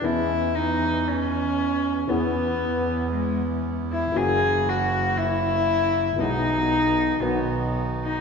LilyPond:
<<
  \new Staff \with { instrumentName = "Cello" } { \time 4/4 \key e \major \tempo 4 = 117 e'4 dis'4 cis'2 | b2 gis4 r8 e'8 | gis'4 fis'4 e'2 | dis'2 b4 r8 dis'8 | }
  \new Staff \with { instrumentName = "Bandoneon" } { \time 4/4 \key e \major <e gis cis'>1 | <b cis' e'>1 | <ais e' fis'>1 | <e b gis'>2 <b dis' fis'>2 | }
  \new Staff \with { instrumentName = "Upright piano" } { \clef bass \time 4/4 \key e \major <e, e b cis' gis'>1 | <e, e b cis' gis'>1 | <fis, e fis ais cis' fis'>1 | <b,, b, e gis b gis'>2 <b,, b, dis fis b fis'>2 | }
  \new Staff \with { instrumentName = "Double bass" } { \clef bass \time 4/4 \key e \major e,1 | e,1 | fis,,1 | b,,2 b,,2 | }
>>